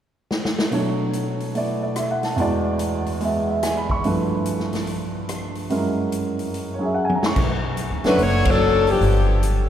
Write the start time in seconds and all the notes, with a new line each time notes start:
0.31 snare
0.45 snare
0.59 snare
0.71 B2 F#3 A3 D4 C#5, open hi-hat
1.13 closed hi-hat
1.40 open hi-hat
1.54 A3 B3 E4 D5, open hi-hat
1.83 D5
1.96 E5, cross-stick, closed hi-hat
2.11 F#5
2.23 A5, snare, open hi-hat
2.36 E2 E3 G#3 F#4, open hi-hat
2.41 D5
2.79 closed hi-hat
3.06 open hi-hat
3.20 G#3 B3 G#4 E5, open hi-hat
3.49 E5
3.63 G#5, cross-stick, snare, closed hi-hat
3.77 B5
3.90 C#6, kick
4.04 G2 F3 A3 E4 B4, open hi-hat
4.45 closed hi-hat
4.60 snare
4.73 snare, open hi-hat
4.87 open hi-hat
5.29 cross-stick, closed hi-hat
5.55 open hi-hat
5.70 F#2 F#3 G#3 E4 A#4, open hi-hat
6.12 closed hi-hat
6.39 open hi-hat
6.54 open hi-hat
6.74 C#5
6.79 F#3 C#4 G#4
6.84 E5
6.94 F#5
7.05 G#5
7.10 high tom
7.15 A#5
7.23 C#6, snare
7.36 B1, kick, crash
7.77 closed hi-hat
7.91 D2
8.04 F#2 D3 F#3 A3 C#4 D4 F#4 B4, snare, open hi-hat
8.18 F#1 F#4, open hi-hat
8.22 A3 D4 C#5
8.45 F#3 C#4 D4 A4, kick, ride
8.87 F3 B3 D4 G4, open hi-hat
9.01 G1, open hi-hat
9.43 closed hi-hat